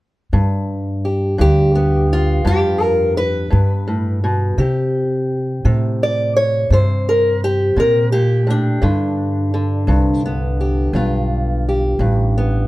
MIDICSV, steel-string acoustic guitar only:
0, 0, Header, 1, 2, 480
1, 0, Start_track
1, 0, Tempo, 708383
1, 218, Time_signature, 12, 3, 24, 8
1, 8589, End_track
2, 0, Start_track
2, 0, Title_t, "Steel-string acoustic guitar"
2, 0, Program_c, 0, 25
2, 224, Note_on_c, 0, 43, 65
2, 710, Note_on_c, 0, 67, 44
2, 929, Note_off_c, 0, 43, 0
2, 937, Note_on_c, 0, 43, 73
2, 953, Note_off_c, 0, 67, 0
2, 956, Note_on_c, 0, 67, 83
2, 1189, Note_on_c, 0, 59, 44
2, 1442, Note_on_c, 0, 65, 70
2, 1649, Note_off_c, 0, 43, 0
2, 1657, Note_on_c, 0, 43, 67
2, 1667, Note_off_c, 0, 67, 0
2, 1675, Note_on_c, 0, 67, 87
2, 1909, Note_off_c, 0, 67, 0
2, 1909, Note_on_c, 0, 70, 81
2, 2147, Note_off_c, 0, 70, 0
2, 2150, Note_on_c, 0, 71, 85
2, 2154, Note_off_c, 0, 65, 0
2, 2366, Note_off_c, 0, 43, 0
2, 2374, Note_on_c, 0, 43, 57
2, 2619, Note_off_c, 0, 43, 0
2, 2626, Note_on_c, 0, 45, 57
2, 2865, Note_off_c, 0, 45, 0
2, 2871, Note_on_c, 0, 47, 57
2, 3079, Note_off_c, 0, 59, 0
2, 3105, Note_on_c, 0, 48, 70
2, 3108, Note_off_c, 0, 47, 0
2, 3108, Note_off_c, 0, 71, 0
2, 3114, Note_on_c, 0, 67, 48
2, 3822, Note_off_c, 0, 48, 0
2, 3830, Note_on_c, 0, 48, 67
2, 4086, Note_on_c, 0, 74, 82
2, 4310, Note_off_c, 0, 74, 0
2, 4313, Note_on_c, 0, 73, 76
2, 4547, Note_off_c, 0, 48, 0
2, 4549, Note_off_c, 0, 73, 0
2, 4556, Note_on_c, 0, 48, 72
2, 4563, Note_on_c, 0, 72, 69
2, 4800, Note_off_c, 0, 67, 0
2, 4802, Note_on_c, 0, 70, 76
2, 5033, Note_off_c, 0, 70, 0
2, 5042, Note_on_c, 0, 67, 78
2, 5260, Note_off_c, 0, 48, 0
2, 5268, Note_on_c, 0, 48, 58
2, 5272, Note_off_c, 0, 67, 0
2, 5273, Note_off_c, 0, 72, 0
2, 5283, Note_on_c, 0, 70, 77
2, 5502, Note_off_c, 0, 70, 0
2, 5504, Note_on_c, 0, 67, 77
2, 5505, Note_off_c, 0, 48, 0
2, 5512, Note_on_c, 0, 46, 58
2, 5736, Note_off_c, 0, 46, 0
2, 5738, Note_on_c, 0, 45, 59
2, 5762, Note_on_c, 0, 62, 76
2, 5974, Note_on_c, 0, 43, 68
2, 5980, Note_off_c, 0, 45, 0
2, 5981, Note_on_c, 0, 50, 49
2, 5983, Note_off_c, 0, 67, 0
2, 6455, Note_off_c, 0, 50, 0
2, 6463, Note_on_c, 0, 50, 43
2, 6692, Note_off_c, 0, 43, 0
2, 6695, Note_on_c, 0, 43, 71
2, 6946, Note_off_c, 0, 62, 0
2, 6949, Note_on_c, 0, 59, 43
2, 7187, Note_on_c, 0, 67, 45
2, 7416, Note_off_c, 0, 43, 0
2, 7419, Note_on_c, 0, 43, 69
2, 7426, Note_on_c, 0, 65, 48
2, 7916, Note_off_c, 0, 67, 0
2, 7918, Note_on_c, 0, 67, 43
2, 8126, Note_off_c, 0, 43, 0
2, 8134, Note_on_c, 0, 43, 66
2, 8378, Note_off_c, 0, 59, 0
2, 8386, Note_on_c, 0, 59, 44
2, 8589, Note_off_c, 0, 43, 0
2, 8589, Note_off_c, 0, 50, 0
2, 8589, Note_off_c, 0, 59, 0
2, 8589, Note_off_c, 0, 65, 0
2, 8589, Note_off_c, 0, 67, 0
2, 8589, End_track
0, 0, End_of_file